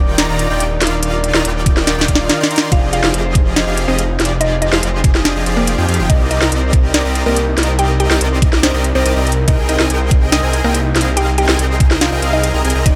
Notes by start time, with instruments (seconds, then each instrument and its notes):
Already playing: detuned saw bass D#1, supersaw synth D#3 D#4 F4 D5 G5, harp C4 D4 A#4 C5 D5
0.08 harp G4
0.18 detuned saw bass D#1, supersaw synth D#3 D#4 F4 D5 A#5, harp D#4, snare, closed hi-hat
0.29 detuned saw bass D#1, supersaw synth D#3 D#4 F4 D5 A#5, harp D4
0.39 harp D5, closed hi-hat
0.50 detuned saw bass D#1, supersaw synth D#3 D#4 F4 D5 G5, harp A#4
0.60 harp G4, closed hi-hat
0.71 harp D#4
0.81 detuned saw bass D#1, supersaw synth D#3 D#4 F4 D5 F5, harp D4, snare, closed hi-hat
0.87 closed hi-hat
0.92 harp D5
1.03 harp D5, closed hi-hat
1.13 harp A#4
1.24 harp G4, closed hi-hat
1.34 detuned saw bass D#1, supersaw synth D#3 D#4 F4 D5 A#5, harp D#4, snare
1.45 detuned saw bass D#1, supersaw synth D#3 D#4 F4 D5 G5, harp D4, closed hi-hat
1.56 harp D5
1.66 harp A#4, kick, closed hi-hat
1.77 harp G4, snare
1.87 detuned saw bass D#1, supersaw synth D#3 D#4 F4 D5 G5, harp D#4, snare, closed hi-hat
1.98 detuned saw bass D#1, supersaw synth D#3 D#4 F4 D5 G5, harp D4, snare
2.08 detuned saw bass D#1, supersaw synth D#3 D#4 F4 D5 F5, harp D5, kick, closed hi-hat
2.15 harp A#4, snare
2.29 harp G4, snare, closed hi-hat
2.40 supersaw synth D#3 D#4 F4 D5 C6, harp D#4, snare
2.51 supersaw synth D#3 D#4 F4 D5 A#5, harp D4, closed hi-hat
2.56 snare, closed hi-hat
2.61 supersaw synth D#3 D#4 F4 D5 C6, harp D5
2.72 detuned saw bass F1, supersaw synth F3 F4 G4 G#4 D#5, synth pluck F4 F5, harp C5, kick, closed hi-hat
2.82 harp G#4
2.93 harp F4, synth pluck F4 F5, closed hi-hat
3.04 detuned saw bass F1, supersaw synth F3 F4 G4 G#4 F5, harp D#4, snare
3.14 detuned saw bass F1, supersaw synth F3 F4 G4 G#4 D#5, harp C4, closed hi-hat
3.25 harp C5
3.35 harp G#4, kick, closed hi-hat
3.46 harp F4
3.56 detuned saw bass F1, supersaw synth F3 F4 G4 G#4 F5, harp D#4, synth pluck D#4 D#5, snare, closed hi-hat
3.67 detuned saw bass F1, supersaw synth F3 F4 G4 G#4 F5, harp C4
3.77 harp C5, closed hi-hat
3.88 detuned saw bass F1, supersaw synth F3 F4 G4 G#4 D#5, synth pluck C4 C5, harp G#4
3.98 harp F4, closed hi-hat
4.09 harp D#4
4.19 detuned saw bass F1, supersaw synth F3 F4 G4 G#4 D5, harp C4, snare, closed hi-hat
4.25 closed hi-hat
4.30 harp C5
4.41 synth pluck D#4 D#5, harp C5, closed hi-hat
4.51 harp G#4
4.62 synth pluck D#4 D#5, harp F4, closed hi-hat
4.72 detuned saw bass F1, supersaw synth F3 F4 G4 G#4 F5, harp D#4, snare
4.83 detuned saw bass F1, supersaw synth F3 F4 G4 G#4 D#5, harp C4, closed hi-hat
4.93 harp C5
5.04 harp G#4, kick, closed hi-hat
5.15 harp F4, snare
5.25 detuned saw bass F1, supersaw synth F3 F4 G4 G#4 D#5, synth pluck D4 D5, harp D#4, snare, closed hi-hat
5.36 detuned saw bass F1, supersaw synth F3 F4 G4 G#4 D#5, harp C4
5.46 detuned saw bass F1, supersaw synth F3 F4 G4 G#4 D5, harp C5, closed hi-hat
5.57 synth pluck A#3 A#4, harp G#4
5.67 harp F4, closed hi-hat
5.78 detuned saw bass F2, supersaw synth F3 F4 G4 G#4 G5, harp D#4
5.88 detuned saw bass F2, supersaw synth F3 F4 G4 G#4 F5, harp C4, closed hi-hat
5.94 closed hi-hat
5.99 detuned saw bass F1, supersaw synth F3 F4 G4 G#4 G5, harp C5
6.09 detuned saw bass C2, supersaw synth C4 G4 A#4 D5 D#5, synth pluck D#4 D#5, harp C5, kick, closed hi-hat
6.20 harp A#4
6.31 synth pluck D#4 D#5, harp G4, closed hi-hat
6.41 detuned saw bass C2, supersaw synth C4 G4 A#4 D5 D#5, harp D#4, snare
6.52 detuned saw bass C2, supersaw synth C4 G4 A#4 D5 D#5, harp C4, closed hi-hat
6.63 harp C5
6.73 harp A#4, kick, closed hi-hat
6.84 harp G4
6.94 detuned saw bass C2, supersaw synth C4 G4 A#4 D5 D#5, synth pluck D4 D5, harp D#4, snare, closed hi-hat
7.05 detuned saw bass C2, supersaw synth C4 G4 A#4 D5 D#5, harp C4
7.15 harp C5, closed hi-hat
7.26 detuned saw bass C2, synth pluck A#3 A#4, supersaw synth C4 G4 A#4 D5 D#5, harp A#4
7.36 harp G4, closed hi-hat
7.47 harp D#4
7.57 detuned saw bass C2, supersaw synth C4 G4 A#4 D5 D#5, harp C4, snare, closed hi-hat
7.63 closed hi-hat
7.68 harp C5
7.79 synth pluck G4 G5, harp C5, closed hi-hat
7.90 harp A#4
8.00 synth pluck G4 G5, harp G4, closed hi-hat
8.10 detuned saw bass C2, supersaw synth C4 G4 A#4 D5 D#5, harp D#4, snare
8.21 detuned saw bass C2, supersaw synth C4 G4 A#4 D5 D#5, harp C4, closed hi-hat
8.32 harp C5
8.42 harp A#4, kick, closed hi-hat
8.53 harp G4, snare
8.63 detuned saw bass C2, supersaw synth C4 G4 A#4 D5 D#5, synth pluck C4 C5, harp D#4, snare, closed hi-hat
8.74 detuned saw bass C2, supersaw synth C4 G4 A#4 D5 D#5, harp C4
8.84 harp G4, closed hi-hat
8.95 detuned saw bass C2, supersaw synth C4 G4 A#4 D5 D#5, synth pluck C4 C5, harp A#4
9.05 detuned saw bass C2, supersaw synth C4 G4 A#4 D5 D#5, harp D#4, closed hi-hat
9.16 detuned saw bass C2, supersaw synth C4 G4 A#4 D5 D#5, harp G4
9.27 harp A#4, closed hi-hat
9.32 closed hi-hat
9.37 harp G4
9.48 detuned saw bass C2, supersaw synth C4 G#4 A#4 D#5 G5, synth pluck D#4 D#5, harp C5, kick, closed hi-hat
9.59 harp G#4
9.69 synth pluck D#4 D#5, harp G4, closed hi-hat
9.79 detuned saw bass C2, supersaw synth C4 G#4 A#4 D#5 G#5, harp D#4, snare
9.90 detuned saw bass C2, supersaw synth C4 G#4 A#4 D#5 G5, harp C4, closed hi-hat
10.01 harp C5
10.11 harp G#4, kick, closed hi-hat
10.22 harp G4
10.32 detuned saw bass C2, supersaw synth C4 G#4 A#4 D#5 G#5, harp D#4, synth pluck D#4 D#5, snare, closed hi-hat
10.43 detuned saw bass C2, supersaw synth C4 G#4 A#4 D#5 G#5, harp C4
10.53 harp C5, closed hi-hat
10.64 detuned saw bass C2, synth pluck A#3 A#4, supersaw synth C4 G#4 A#4 D#5 G5, harp G#4
10.75 harp G4, closed hi-hat
10.85 harp D#4
10.95 detuned saw bass C2, supersaw synth C4 G#4 A#4 D#5 F5, harp C4, snare, closed hi-hat
11.01 closed hi-hat
11.07 harp G4
11.17 synth pluck G4 G5, harp C5, closed hi-hat
11.28 harp G#4
11.38 harp G4, synth pluck G4 G5, closed hi-hat
11.49 detuned saw bass C2, supersaw synth C4 G#4 A#4 D#5 G#5, harp D#4, snare
11.59 detuned saw bass C2, supersaw synth C4 G#4 A#4 D#5 G5, harp C4, closed hi-hat
11.70 harp C5
11.80 harp G#4, kick, closed hi-hat
11.91 harp G4, snare
12.01 detuned saw bass C2, supersaw synth C4 G#4 A#4 D#5 G5, harp D#4, synth pluck F4 F5, snare, closed hi-hat
12.12 detuned saw bass C2, supersaw synth C4 G#4 A#4 D#5 G5, harp C4
12.22 detuned saw bass C2, supersaw synth C4 G#4 A#4 D#5 F5, harp C5, closed hi-hat
12.33 synth pluck D#4 D#5, harp G#4
12.44 harp G4, closed hi-hat
12.54 detuned saw bass C2, supersaw synth C4 G#4 A#4 D#5 A#5, harp D#4
12.64 detuned saw bass C2, supersaw synth C4 G#4 A#4 D#5 G#5, harp C4, closed hi-hat
12.70 closed hi-hat
12.75 detuned saw bass C2, supersaw synth C4 G#4 A#4 D#5 A#5, harp G4
12.86 detuned saw bass D#1, supersaw synth D#3 D#4 F4, synth pluck D#4 D#5, harp D5, kick, closed hi-hat